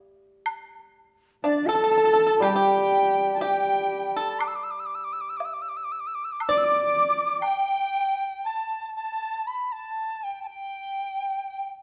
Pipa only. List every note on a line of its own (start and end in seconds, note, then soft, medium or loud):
1.44 1.67 D4 medium
1.69 1.74 A4 medium
1.75 1.82 A4 medium
1.84 1.90 A4 medium
1.91 1.96 A4 medium
1.98 2.04 A4 medium
2.05 2.12 A4 medium
2.13 2.18 A4 medium
2.20 2.25 A4 medium
2.27 2.34 A4 medium
2.42 2.54 G4 medium
2.56 3.37 G4 medium
3.41 4.11 G4 medium
4.17 4.39 A4 medium
6.49 7.38 D5 medium